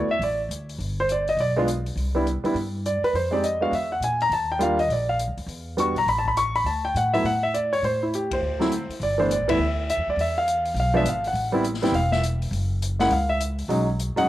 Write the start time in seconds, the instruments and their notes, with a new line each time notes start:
0.08 grand piano E5, muted upright bass stroke
0.19 upright bass A1, open hi-hat
0.23 grand piano D5
0.49 upright bass D2, closed hi-hat
0.69 open hi-hat
0.78 upright bass G1, open hi-hat
1.00 grand piano C5
1.09 grand piano D5, closed hi-hat
1.27 grand piano D#5, open hi-hat
1.37 upright bass B1, grand piano D5, open hi-hat
1.57 grand piano G#3 B3 D4 F4
1.68 closed hi-hat
1.86 open hi-hat
1.96 upright bass C2, open hi-hat
2.15 grand piano G3 B3 D4 E4
2.27 closed hi-hat
2.43 grand piano G3 B3 D4 E4, muted upright bass stroke, open hi-hat
2.54 upright bass G2, open hi-hat
2.85 grand piano D5, closed hi-hat
3.02 grand piano B4, muted upright bass stroke, open hi-hat
3.13 upright bass F2, grand piano C5, open hi-hat
3.31 grand piano G#3 C4 D#4 G4 D5
3.44 grand piano D#5, closed hi-hat
3.61 grand piano G#3 B3 D4 F#4 F5
3.71 upright bass E2, grand piano E5, open hi-hat
3.92 grand piano F#5
4.00 upright bass A#2, grand piano G#5, closed hi-hat
4.20 grand piano A#5, open hi-hat
4.30 upright bass D#2, grand piano A5, open hi-hat
4.52 grand piano G5
4.59 grand piano G3 A#3 D4 F4 F5, closed hi-hat
4.79 grand piano D#5, open hi-hat
4.88 upright bass A#1, grand piano D5, open hi-hat
5.09 grand piano F5
5.19 closed hi-hat
5.28 upright bass D2
5.37 upright bass D#2, open hi-hat
5.46 upright bass E2, open hi-hat
5.77 grand piano G3 B3 D4 F#4 C#6, closed hi-hat
5.95 upright bass B1, grand piano A#5, open hi-hat
6.06 upright bass A1, grand piano B5, open hi-hat
6.18 grand piano A5
6.25 grand piano B5, kick
6.37 grand piano C#6, closed hi-hat
6.55 grand piano B5, open hi-hat
6.64 upright bass D2, grand piano A5, open hi-hat
6.85 grand piano G5
6.95 upright bass A2, grand piano F#5, closed hi-hat
7.13 grand piano F#3 A3 B3 E4 E5, open hi-hat
7.24 upright bass A2, grand piano F#5, open hi-hat
7.43 grand piano E5
7.54 grand piano D5, closed hi-hat
7.73 grand piano C#5, open hi-hat
7.82 upright bass A2, grand piano C5, open hi-hat
8.03 grand piano E4
8.13 grand piano G4, closed hi-hat
8.31 grand piano C5, kick, ride
8.41 upright bass D2
8.60 grand piano F#3 A3 C4 E4, snare
8.72 closed hi-hat
8.89 muted upright bass stroke, open hi-hat
9.00 upright bass G1, grand piano D5, open hi-hat
9.18 grand piano E3 A3 B3 D4 C5
9.31 grand piano D5, closed hi-hat
9.39 upright bass A1
9.48 upright bass F#1, grand piano E3 A3 B3 E4 E5, kick, ride
9.58 upright bass D2
9.89 grand piano E5, closed hi-hat
9.97 upright bass E2
10.07 upright bass D2, grand piano D5
10.16 upright bass E2, open hi-hat
10.21 grand piano E5
10.38 grand piano F5
10.48 closed hi-hat
10.65 open hi-hat
10.74 upright bass B1, open hi-hat
10.80 grand piano F5
10.94 grand piano F3 G#3 B3 D4 E5
11.04 upright bass G#1, closed hi-hat
11.09 grand piano F5
11.24 grand piano F#5, open hi-hat
11.33 upright bass A1, open hi-hat
11.52 grand piano G3 B3 C4 E4
11.64 closed hi-hat
11.74 snare
11.82 grand piano G3 B3 C4 E4 G5, snare, open hi-hat
11.92 upright bass E1, grand piano F5, open hi-hat
12.12 grand piano E5, snare
12.23 closed hi-hat
12.42 open hi-hat
12.51 upright bass F#1, open hi-hat
12.82 closed hi-hat
12.99 grand piano G#3 A#3 C#4 E4 F#5, snare, open hi-hat
13.10 upright bass C#2, grand piano F5, open hi-hat
13.29 grand piano E5
13.40 closed hi-hat
13.58 open hi-hat
13.68 upright bass B1, grand piano F#3 G#3 C#4 D#4, open hi-hat
13.99 closed hi-hat
14.16 grand piano F#3 G#3 C#4 D#4 F#5, muted upright bass stroke, open hi-hat